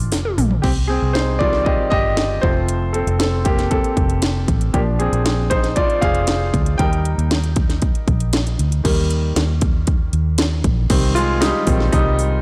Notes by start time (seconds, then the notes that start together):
Already playing: A#1 A#3 D4 F4 D5
0.12 F1, snare, open hi-hat
0.25 high tom
0.38 A#1, mid tom, open hi-hat
0.51 floor tom
0.62 C2 C4 G4, kick, crash
0.87 C4 G#4
1.02 C2
1.13 D#4 C5, snare
1.39 D#3 G3 C4 F4 D5, kick
1.53 snare
1.65 G4 D#5, kick
1.90 G1 G4 D#5, kick
2.17 snare
2.41 F1 F3 A3 C4 F4 C5, kick
2.69 closed hi-hat
2.93 C4 A4, closed hi-hat
3.07 F1, closed hi-hat
3.19 C4 A4, snare, closed hi-hat
3.45 A#3 G4, kick, closed hi-hat
3.58 snare, closed hi-hat
3.71 C4 A4, kick, closed hi-hat
3.84 closed hi-hat
3.97 F1, kick, closed hi-hat
4.10 closed hi-hat
4.22 snare, closed hi-hat
4.48 A1, kick, closed hi-hat
4.61 closed hi-hat
4.74 A#1 F3 A#3 D4 G4, kick, closed hi-hat
4.99 C4 G#4, closed hi-hat
5.13 A#1, closed hi-hat
5.26 snare, closed hi-hat
5.50 D#4 C5, kick, closed hi-hat
5.63 snare, closed hi-hat
5.76 F4 D5, kick, closed hi-hat
5.90 closed hi-hat
6.01 F1 G#4 F5, kick, closed hi-hat
6.15 closed hi-hat
6.27 snare, closed hi-hat
6.54 D2, kick, closed hi-hat
6.66 closed hi-hat
6.78 D#2 G3 A#3 D#4 A#4 G5, kick, closed hi-hat
6.93 closed hi-hat
7.05 closed hi-hat
7.18 D#2, closed hi-hat
7.31 snare, closed hi-hat
7.44 closed hi-hat
7.56 kick, closed hi-hat
7.70 snare, closed hi-hat
7.82 kick, closed hi-hat
7.95 closed hi-hat
8.08 A#1, kick, closed hi-hat
8.20 closed hi-hat
8.33 snare, closed hi-hat
8.47 closed hi-hat
8.59 D2, closed hi-hat
8.72 closed hi-hat
8.84 D#2 D#3 G3 A#3, kick, closed hi-hat, crash
9.10 closed hi-hat
9.36 D#2, snare, closed hi-hat
9.61 kick, closed hi-hat
9.87 kick, closed hi-hat
10.13 D#2, closed hi-hat
10.38 snare, closed hi-hat
10.64 A#1, kick, closed hi-hat
10.90 C2 D#3 G3 C4, kick, open hi-hat, crash
11.15 G#3 F4, open hi-hat
11.41 G3 D#4, snare, open hi-hat
11.67 A#1 D#3 G3 C4, kick, open hi-hat
11.80 snare
11.92 C2 G3 D#4, kick, open hi-hat
12.19 open hi-hat